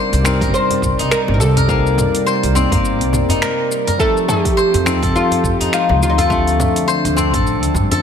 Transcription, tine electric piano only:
Already playing: G3 C4 D#4 A#4
0.23 G3 C4 D#4
0.27 A#4
1.68 G3 C4 D#4 A#4
2.54 G3 A#3 C4 D#4
3.98 F3 C4 D#4 A4
4.84 F3 C4 D#4 A4
6.29 F3 C4 D4 A4
7.15 F3 C4 D4 A4
7.89 F3 C4 D4
7.93 A4

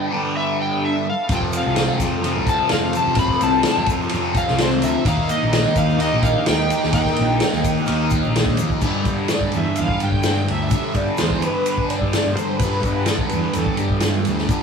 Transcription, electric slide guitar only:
Already playing: G5
0.37 E5
0.62 G5
0.85 E5
1.10 F5
1.36 G5
1.57 F5
2.49 A5
2.71 F5
2.97 A5
3.19 B5
3.43 A5
4.37 F5
4.61 C5
4.84 E5
5.07 F5
5.31 D#5
5.77 F5
6.01 D#5
6.24 F5
6.48 G5
6.94 G5
7.86 F5

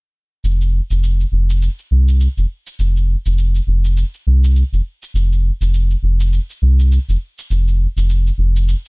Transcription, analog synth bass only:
0.44 F1
0.90 F1
1.32 F1
1.91 C2
2.37 F1
2.79 F1
3.26 F1
3.67 F1
4.27 C2
4.73 F1
5.14 F1
5.61 F1
6.03 F1
6.62 C2
7.09 F1
7.50 F1
7.96 F1
8.38 F1

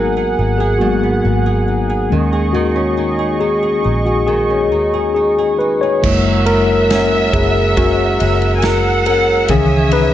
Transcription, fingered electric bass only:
Already playing: G#1
0.39 G#1
1.25 G#1
2.12 D#2
3.86 A#1
4.72 D#2
6.04 F#1
7.33 F#1
8.21 F#1
9.49 C#2

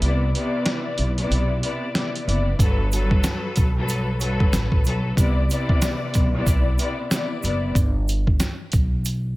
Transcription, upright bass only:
0.02 C2
0.98 B1
1.31 B1
2.27 F#1
2.59 G1
3.57 B1
4.41 G1
4.53 A1
4.86 B1
5.17 C2
6.15 B1
6.47 B1
7.44 F#1
7.75 G1
8.74 B1

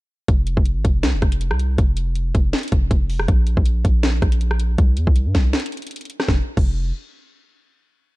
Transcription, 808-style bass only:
0.28 F1
0.57 F1
0.76 G#1
0.85 F1
1.03 C2
1.13 F1
1.22 F1
1.51 C2
1.78 F1
2.35 F1
2.72 F1
2.91 F1
3.28 A#1
3.57 A#1
3.85 A#1
4.22 A#1
4.78 C2
4.97 E2
5.07 C2
5.26 G2
5.35 C2
6.28 F1
6.57 F1

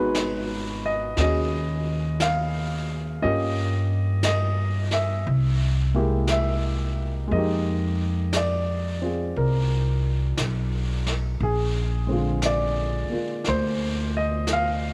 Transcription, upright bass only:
Already playing: G#1
1.17 D#2
3.24 G2
5.27 C2
7.31 F2
9.36 C2
10.38 B1
11.40 A#1
13.11 muted upright bass stroke
13.47 D2

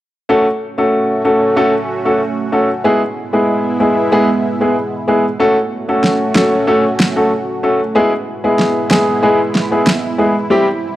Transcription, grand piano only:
0.29 A3 C#4 F#4 A4
0.78 A3 C#4 F#4 A4
1.25 A3 C#4 F#4 A4
1.56 A3 C#4 F#4 A4
2.05 A3 C#4 F#4 A4
2.52 A3 C#4 F#4 A4
2.84 G#3 B3 E4 G#4
3.33 G#3 B3 E4 G#4
3.80 G#3 B3 E4 G#4
4.12 G#3 B3 E4 G#4
4.61 G#3 B3 E4 G#4
5.08 G#3 B3 E4 G#4
5.40 A3 C#4 F#4 A4
5.88 A3 C#4 F#4 A4
6.35 A3 C#4 F#4 A4
6.67 A3 C#4 F#4 A4
7.16 A3 C#4 F#4 A4
7.63 A3 C#4 F#4 A4
7.95 G#3 B3 E4 G#4
8.44 G#3 B3 E4 G#4
8.91 G#3 B3 E4 G#4
9.22 G#3 B3 E4 G#4
9.71 G#3 B3 E4 G#4
10.18 G#3 B3 E4 G#4
10.50 G3 C4 E4 G4

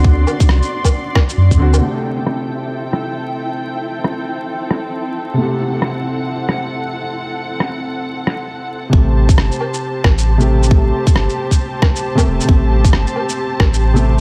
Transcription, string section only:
Already playing: F#4 D5 C6
1.81 C4 A4 G5
5.38 F#5
8.92 G4 C5 A5

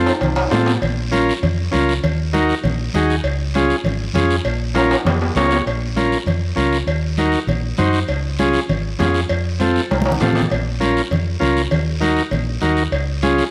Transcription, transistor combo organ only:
Already playing: C4 F4 A4
0.51 C4 F4 A4
1.11 C#4 F4 A#4
1.71 C#4 F4 A#4
2.33 D#4 F#4 A#4
2.94 D#4 F#4 G#4
3.55 C#4 F4 G#4
4.15 C#4 F4 G#4
4.74 C#4 F4 A#4
5.36 C#4 F4 A#4 C#5
5.96 C#4 F4 A#4
6.56 C#4 F4 A#4
7.18 D#4 F#4 A#4
7.78 D#4 F#4 C5
8.39 C#4 F4 G#4
8.99 C#4 F4 G#4
9.60 C4 F4 A4
10.21 C4 F4 A4
10.80 C#4 F4 A#4
11.40 C#4 F4 A#4
12.00 D#4 F#4 A#4
12.61 D#4 F#4 A#4
13.23 C#4 F4 G#4

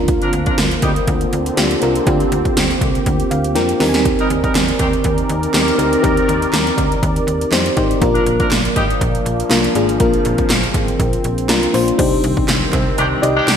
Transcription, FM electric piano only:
Already playing: C4 D4 F4 A#4
1.56 C4 D4 F4 G4
1.81 C4 D4 F4 A#4
2.06 C4 D4 F4 G4
3.31 F5
3.55 C4 D4 F4 A#4 G5
3.80 C4 D#4 G4 A#4
3.89 G#5
5.53 C4 D#4 G4 A#4
5.78 C4 D#4 G4 A#4
6.02 C4 D#4 G4 A#4
7.51 C4 D#4 G4 C5
7.76 C4 D#4 G4 C5
8.01 A#3 D4 F4 A#4
9.49 A#3 D4 F4 A#4
9.75 A#3 D4 F4 G#4
9.99 A#3 D4 F4 A#4
11.48 A#3 D4 F4 A#4
11.73 A#3 D4 F4 C5
11.98 D4 D#4 G4 C5
13.22 D#4 G4 D5 D#5

